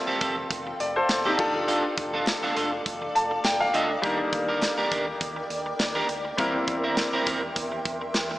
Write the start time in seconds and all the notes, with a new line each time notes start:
Already playing: G3 A3 C4 F4 A4 F5 G5 C6
0.07 C4 G4 A4
0.20 F1 C4 G4 A4, kick, closed hi-hat
0.37 muted clean electric guitar stroke
0.50 F1, muted clean electric guitar stroke, kick, closed hi-hat
0.67 muted clean electric guitar stroke
0.80 F1 D5, closed hi-hat
0.96 A4 C5, muted clean electric guitar stroke
1.09 F1, muted clean electric guitar stroke, snare, clap, closed hi-hat, tambourine
1.25 C4 D#4 G4 A4
1.37 F1 D4 F4 A4 D5 D6, muted clean electric guitar stroke, kick, crash
1.55 muted clean electric guitar stroke
1.68 D4 F4 A4, closed hi-hat
1.84 muted clean electric guitar stroke
1.97 F1, muted clean electric guitar stroke, kick, closed hi-hat
2.14 D4 F4 A4
2.27 muted clean electric guitar stroke, snare, clap, closed hi-hat, tambourine
2.43 D4 F4 A4
2.56 F1 D4 F4 A4, closed hi-hat
2.72 muted clean electric guitar stroke
2.86 F1, muted clean electric guitar stroke, kick, closed hi-hat
3.02 muted clean electric guitar stroke
3.15 F1 A5, closed hi-hat
3.31 muted clean electric guitar stroke
3.44 F1 G5, muted clean electric guitar stroke, snare, clap, closed hi-hat, tambourine
3.60 F5, muted clean electric guitar stroke
3.74 D2 D4 F4 A4 D#5, closed hi-hat
3.90 muted clean electric guitar stroke
4.02 D#2 G3 A#3 D4 D#4 G4 A#4 D5 G5, kick, closed hi-hat
4.19 muted clean electric guitar stroke
4.33 D#2, muted clean electric guitar stroke, kick, closed hi-hat
4.49 D4 G4 A#4
4.62 muted clean electric guitar stroke, snare, clap, closed hi-hat, tambourine
4.78 D4 G4 A#4
4.91 D#2 D4 G4 A#4, kick, closed hi-hat
5.07 muted clean electric guitar stroke
5.21 D#2, muted clean electric guitar stroke, kick, closed hi-hat
5.36 muted clean electric guitar stroke
5.50 D#2, closed hi-hat
5.66 muted clean electric guitar stroke
5.79 D#2, muted clean electric guitar stroke, snare, clap, closed hi-hat, tambourine
5.95 D4 G4 A#4
6.09 D2, muted clean electric guitar stroke, closed hi-hat
6.25 muted clean electric guitar stroke
6.37 E2 G3 A#3 C4 E4 A#4 E5 G5 C6, kick, closed hi-hat
6.54 muted clean electric guitar stroke
6.68 E2, muted clean electric guitar stroke, kick, closed hi-hat
6.84 C4 E4 A#4
6.97 snare, clap, closed hi-hat, tambourine
7.13 C4 E4 A#4
7.26 E2 C4 E4 A#4, kick, closed hi-hat
7.43 muted clean electric guitar stroke
7.56 E2, muted clean electric guitar stroke, kick, closed hi-hat
7.72 muted clean electric guitar stroke
7.85 E2, kick, closed hi-hat
8.01 muted clean electric guitar stroke
8.15 E2, muted clean electric guitar stroke, snare, clap, closed hi-hat, tambourine
8.31 muted clean electric guitar stroke